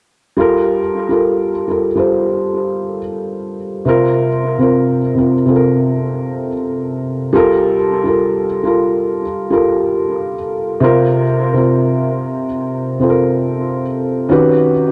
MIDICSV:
0, 0, Header, 1, 2, 480
1, 0, Start_track
1, 0, Key_signature, -2, "minor"
1, 0, Tempo, 869565
1, 206, Time_signature, 4, 2, 24, 8
1, 8234, End_track
2, 0, Start_track
2, 0, Title_t, "Felt piano"
2, 0, Program_c, 0, 0
2, 202, Note_on_c, 0, 55, 91
2, 209, Note_on_c, 0, 65, 91
2, 218, Note_on_c, 0, 69, 83
2, 223, Note_on_c, 0, 70, 109
2, 300, Control_c, 0, 64, 127
2, 433, Note_off_c, 0, 55, 0
2, 437, Note_off_c, 0, 65, 0
2, 441, Note_off_c, 0, 69, 0
2, 444, Note_off_c, 0, 70, 0
2, 602, Note_on_c, 0, 55, 80
2, 611, Note_on_c, 0, 65, 72
2, 617, Note_on_c, 0, 69, 76
2, 622, Note_on_c, 0, 70, 84
2, 822, Note_off_c, 0, 55, 0
2, 826, Note_off_c, 0, 65, 0
2, 830, Note_off_c, 0, 69, 0
2, 832, Note_off_c, 0, 70, 0
2, 926, Note_on_c, 0, 55, 66
2, 932, Note_on_c, 0, 65, 52
2, 939, Note_on_c, 0, 69, 62
2, 945, Note_on_c, 0, 70, 73
2, 1024, Note_off_c, 0, 55, 0
2, 1027, Note_off_c, 0, 65, 0
2, 1031, Note_off_c, 0, 69, 0
2, 1034, Note_off_c, 0, 70, 0
2, 1079, Note_on_c, 0, 55, 76
2, 1087, Note_on_c, 0, 65, 69
2, 1091, Note_on_c, 0, 69, 66
2, 1098, Note_on_c, 0, 72, 82
2, 1643, Note_off_c, 0, 55, 0
2, 1647, Note_off_c, 0, 65, 0
2, 1649, Note_off_c, 0, 69, 0
2, 1652, Note_off_c, 0, 72, 0
2, 2126, Note_on_c, 0, 48, 91
2, 2133, Control_c, 0, 64, 0
2, 2133, Note_on_c, 0, 60, 88
2, 2139, Note_on_c, 0, 65, 86
2, 2146, Note_on_c, 0, 70, 112
2, 2223, Control_c, 0, 64, 127
2, 2355, Note_off_c, 0, 48, 0
2, 2359, Note_off_c, 0, 60, 0
2, 2362, Note_off_c, 0, 65, 0
2, 2365, Note_off_c, 0, 70, 0
2, 2530, Note_on_c, 0, 48, 75
2, 2537, Note_on_c, 0, 60, 74
2, 2543, Note_on_c, 0, 65, 70
2, 2552, Note_on_c, 0, 70, 89
2, 2746, Note_off_c, 0, 48, 0
2, 2749, Note_off_c, 0, 60, 0
2, 2753, Note_off_c, 0, 65, 0
2, 2757, Note_off_c, 0, 70, 0
2, 2842, Note_on_c, 0, 48, 66
2, 2850, Note_on_c, 0, 60, 51
2, 2857, Note_on_c, 0, 65, 60
2, 2862, Note_on_c, 0, 70, 76
2, 2942, Note_off_c, 0, 48, 0
2, 2946, Note_off_c, 0, 60, 0
2, 2949, Note_off_c, 0, 65, 0
2, 2952, Note_off_c, 0, 70, 0
2, 3011, Note_on_c, 0, 48, 75
2, 3018, Note_on_c, 0, 60, 69
2, 3025, Note_on_c, 0, 65, 67
2, 3030, Note_on_c, 0, 69, 73
2, 3041, Note_off_c, 0, 69, 0
2, 3068, Note_on_c, 0, 70, 89
2, 3569, Note_off_c, 0, 48, 0
2, 3572, Note_off_c, 0, 60, 0
2, 3576, Note_off_c, 0, 65, 0
2, 3597, Note_off_c, 0, 70, 0
2, 4045, Note_on_c, 0, 55, 112
2, 4054, Control_c, 0, 64, 0
2, 4054, Note_on_c, 0, 65, 95
2, 4060, Note_on_c, 0, 69, 107
2, 4065, Note_on_c, 0, 70, 115
2, 4138, Control_c, 0, 64, 127
2, 4275, Note_off_c, 0, 55, 0
2, 4279, Note_off_c, 0, 65, 0
2, 4282, Note_off_c, 0, 69, 0
2, 4285, Note_off_c, 0, 70, 0
2, 4437, Note_on_c, 0, 55, 79
2, 4444, Note_on_c, 0, 65, 68
2, 4452, Note_on_c, 0, 69, 72
2, 4458, Note_on_c, 0, 70, 83
2, 4660, Note_off_c, 0, 55, 0
2, 4663, Note_off_c, 0, 65, 0
2, 4667, Note_off_c, 0, 69, 0
2, 4670, Note_off_c, 0, 70, 0
2, 4766, Note_on_c, 0, 55, 74
2, 4774, Note_on_c, 0, 65, 75
2, 4780, Note_on_c, 0, 69, 65
2, 4787, Note_on_c, 0, 70, 87
2, 5084, Note_off_c, 0, 55, 0
2, 5087, Note_off_c, 0, 65, 0
2, 5091, Note_off_c, 0, 69, 0
2, 5094, Note_off_c, 0, 70, 0
2, 5245, Note_on_c, 0, 55, 83
2, 5253, Note_on_c, 0, 65, 73
2, 5258, Note_on_c, 0, 69, 80
2, 5264, Note_on_c, 0, 70, 87
2, 5704, Note_off_c, 0, 55, 0
2, 5708, Note_off_c, 0, 65, 0
2, 5710, Note_off_c, 0, 69, 0
2, 5713, Note_off_c, 0, 70, 0
2, 5963, Note_on_c, 0, 48, 115
2, 5972, Note_on_c, 0, 60, 99
2, 5973, Control_c, 0, 64, 0
2, 5980, Note_on_c, 0, 65, 99
2, 5984, Note_on_c, 0, 70, 112
2, 6083, Control_c, 0, 64, 127
2, 6194, Note_off_c, 0, 48, 0
2, 6198, Note_off_c, 0, 60, 0
2, 6202, Note_off_c, 0, 65, 0
2, 6204, Note_off_c, 0, 70, 0
2, 6366, Note_on_c, 0, 48, 83
2, 6373, Note_on_c, 0, 60, 67
2, 6378, Note_on_c, 0, 65, 66
2, 6388, Note_on_c, 0, 70, 85
2, 6875, Note_off_c, 0, 48, 0
2, 6878, Note_off_c, 0, 60, 0
2, 6881, Note_off_c, 0, 65, 0
2, 6885, Note_off_c, 0, 70, 0
2, 7173, Note_on_c, 0, 48, 71
2, 7179, Note_on_c, 0, 60, 80
2, 7187, Note_on_c, 0, 65, 72
2, 7193, Note_on_c, 0, 69, 74
2, 7227, Note_off_c, 0, 69, 0
2, 7229, Note_on_c, 0, 70, 86
2, 7628, Note_off_c, 0, 48, 0
2, 7631, Note_off_c, 0, 60, 0
2, 7635, Note_off_c, 0, 65, 0
2, 7656, Note_off_c, 0, 70, 0
2, 7887, Note_on_c, 0, 51, 106
2, 7891, Note_on_c, 0, 61, 88
2, 7894, Control_c, 0, 64, 0
2, 7898, Note_on_c, 0, 66, 96
2, 7902, Note_on_c, 0, 67, 101
2, 7907, Note_on_c, 0, 71, 108
2, 7998, Control_c, 0, 64, 127
2, 8116, Note_off_c, 0, 51, 0
2, 8118, Note_off_c, 0, 61, 0
2, 8121, Note_off_c, 0, 66, 0
2, 8123, Note_off_c, 0, 67, 0
2, 8126, Note_off_c, 0, 71, 0
2, 8234, End_track
0, 0, End_of_file